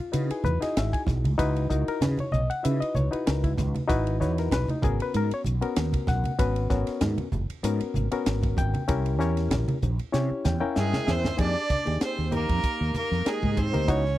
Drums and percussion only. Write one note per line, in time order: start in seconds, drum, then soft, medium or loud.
0.13 hi-hat pedal medium
0.13 ride medium
0.30 ride medium
0.44 hi-hat pedal medium
0.44 high conga medium
0.44 low conga medium
0.62 snare soft
0.62 ride medium
0.77 snare loud
0.77 hi-hat pedal medium
0.77 ride medium
0.93 kick medium
0.93 ride medium
1.07 kick medium
1.07 snare soft
1.07 hi-hat pedal medium
1.07 low conga medium
1.24 ride medium
1.24 high conga medium
1.39 kick loud
1.39 hi-hat pedal medium
1.39 ride medium
1.56 ride medium
1.70 kick medium
1.70 hi-hat pedal medium
1.88 ride medium
2.01 snare loud
2.01 hi-hat pedal medium
2.01 ride medium
2.01 low conga medium
2.17 ride medium
2.17 high conga medium
2.32 hi-hat pedal medium
2.32 high conga medium
2.50 ride medium
2.65 hi-hat pedal medium
2.65 ride medium
2.82 ride medium
2.95 hi-hat pedal medium
2.95 high conga medium
3.13 ride medium
3.27 snare loud
3.27 hi-hat pedal medium
3.27 ride medium
3.44 kick medium
3.44 ride medium
3.44 high conga medium
3.57 kick medium
3.57 snare soft
3.57 hi-hat pedal medium
3.57 low conga medium
3.75 ride medium
3.75 high conga medium
3.90 kick loud
3.90 hi-hat pedal medium
3.90 ride medium
4.07 ride medium
4.21 snare soft
4.21 hi-hat pedal medium
4.38 snare soft
4.38 ride medium
4.51 snare loud
4.51 hi-hat pedal medium
4.51 ride medium
4.51 low conga medium
4.68 ride medium
4.68 high conga medium
4.82 kick loud
4.82 hi-hat pedal medium
4.82 high conga medium
4.82 low conga medium
5.00 ride medium
5.14 hi-hat pedal medium
5.14 ride medium
5.31 ride medium
5.44 hi-hat pedal medium
5.44 high conga medium
5.62 ride medium
5.76 snare loud
5.76 hi-hat pedal medium
5.76 ride medium
5.93 kick medium
5.93 ride medium
5.93 high conga medium
6.07 kick medium
6.07 snare soft
6.07 hi-hat pedal medium
6.07 low conga medium
6.24 ride medium
6.24 high conga medium
6.39 kick loud
6.39 hi-hat pedal medium
6.39 ride medium
6.56 ride medium
6.70 kick medium
6.70 snare soft
6.70 hi-hat pedal medium
6.87 snare soft
6.87 ride medium
7.01 snare loud
7.01 hi-hat pedal medium
7.01 ride medium
7.01 low conga medium
7.18 ride medium
7.18 high conga medium
7.32 hi-hat pedal medium
7.32 high conga medium
7.32 low conga medium
7.50 ride medium
7.64 hi-hat pedal medium
7.64 ride medium
7.80 ride medium
7.94 hi-hat pedal medium
7.94 high conga medium
8.12 ride medium
8.26 snare loud
8.26 hi-hat pedal medium
8.26 ride medium
8.43 kick medium
8.43 ride medium
8.43 high conga medium
8.57 kick medium
8.57 hi-hat pedal medium
8.57 low conga medium
8.74 ride medium
8.74 high conga medium
8.88 kick loud
8.88 hi-hat pedal medium
8.88 ride medium
9.06 ride medium
9.20 snare soft
9.20 hi-hat pedal medium
9.37 snare soft
9.37 ride medium
9.50 snare loud
9.50 hi-hat pedal medium
9.50 ride medium
9.50 low conga medium
9.68 ride medium
9.68 high conga medium
9.82 hi-hat pedal medium
9.82 high conga medium
9.82 low conga medium
9.99 ride medium
10.13 snare medium
10.13 hi-hat pedal medium
10.45 snare medium
10.45 hi-hat pedal medium
10.45 high conga medium
10.45 low conga medium
10.76 snare medium
10.76 hi-hat pedal medium
10.93 snare medium
10.93 high conga medium
11.08 snare medium
11.08 hi-hat pedal medium
11.08 low conga medium
11.24 snare medium
11.24 low conga medium
11.38 kick loud
11.38 hi-hat pedal medium
11.38 ride medium
11.56 snare soft
11.70 kick medium
11.70 hi-hat pedal medium
11.70 ride medium
11.70 high conga medium
11.87 ride medium
12.01 snare loud
12.01 hi-hat pedal medium
12.01 ride medium
12.19 snare soft
12.32 hi-hat pedal medium
12.32 ride medium
12.32 low conga medium
12.49 kick medium
12.49 ride medium
12.64 kick medium
12.64 hi-hat pedal medium
12.64 ride medium
12.94 hi-hat pedal medium
12.94 ride soft
12.94 high conga medium
13.12 snare soft
13.26 snare loud
13.26 hi-hat pedal medium
13.26 ride medium
13.42 kick medium
13.42 high conga medium
13.57 kick medium
13.57 hi-hat pedal medium
13.57 ride soft
13.57 low conga medium
13.74 snare soft
13.74 ride medium
13.74 high conga medium
13.88 kick loud
13.88 hi-hat pedal medium
13.88 ride medium
14.06 snare soft